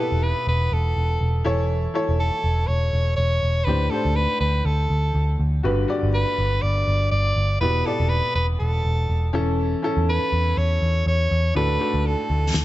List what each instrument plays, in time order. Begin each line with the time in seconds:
Already playing: upright piano B2 E4 G4
0.00 soprano saxophone A4, upright piano B4
0.12 picked electric bass E1
0.23 soprano saxophone B4
0.47 picked electric bass E1, soprano saxophone B4
0.72 picked electric bass E1, soprano saxophone A4
0.96 picked electric bass E1
1.21 picked electric bass E1
1.44 picked electric bass E1, upright piano E3 E4 A4 C#5
1.94 upright piano E4 A4 C#5
2.09 picked electric bass E1
2.20 soprano saxophone A4
2.44 picked electric bass E1
2.67 picked electric bass E1, soprano saxophone C#5
2.93 picked electric bass E1
3.16 picked electric bass E1, soprano saxophone C#5
3.43 picked electric bass E1
3.64 picked electric bass D2, upright piano A2 D4 G4, soprano saxophone B4
3.68 upright piano C5
3.90 upright piano D4 G4 C5, soprano saxophone A4
4.05 picked electric bass D2
4.15 soprano saxophone B4
4.40 picked electric bass D2, soprano saxophone B4
4.65 picked electric bass D2, soprano saxophone A4
4.90 picked electric bass D2
5.15 picked electric bass D2
5.40 picked electric bass D2
5.63 picked electric bass G1, upright piano G2 D3 F#4 G4 B4
5.88 upright piano F#4 G4 D5
6.03 picked electric bass G1
6.14 soprano saxophone B4
6.38 picked electric bass G1
6.62 picked electric bass G1, soprano saxophone D5
6.88 picked electric bass G1
7.11 picked electric bass G1, soprano saxophone D5
7.36 picked electric bass G1
7.61 picked electric bass E1, upright piano B2 E4 G4 B4, soprano saxophone B4
7.85 upright piano E4 G4 D5, soprano saxophone A4
8.00 picked electric bass E1
8.09 soprano saxophone B4
8.35 picked electric bass E1, soprano saxophone B4
8.59 picked electric bass E1, soprano saxophone A4
8.85 picked electric bass E1
9.09 picked electric bass E1
9.33 picked electric bass E1, upright piano E3 C#4 E4 A4
9.82 upright piano C#4 E4 A4
9.97 picked electric bass E2
10.10 soprano saxophone B4
10.32 picked electric bass E2
10.57 picked electric bass E2, soprano saxophone C#5
10.82 picked electric bass E2
11.06 picked electric bass E2, soprano saxophone C#5
11.31 picked electric bass E2
11.55 picked electric bass D2, upright piano A2 D4 F#4 A4, soprano saxophone B4
11.80 upright piano D4 F#4 A4
11.94 picked electric bass D2
12.06 soprano saxophone A4
12.30 picked electric bass D2
12.54 picked electric bass D2, snare